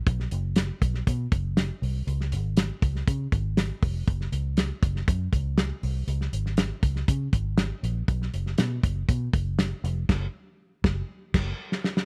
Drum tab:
CC |----------------|----------------|----------------|----------------|
HH |x-x-x-x-x-x-x-o-|x-x-x-x-x-x-x-o-|x-x-x-x-x-x-x-o-|x-x-x-x-x-x-x-x-|
SD |-o--o--o----o---|-o--o--o----o---|-o--o--o----o---|-o-oo--o----o---|
BD |o-----o-o-o-----|------o-o-o---o-|o-----o-o-o-----|------o-o-o-----|

CC |----------------|x---------x-----|
HH |x-x-x-x-x-x-x-x-|----------------|
SD |-o-oo-------o---|o-----o---o--ooo|
BD |o-----o-o-o-----|o-----o---o-----|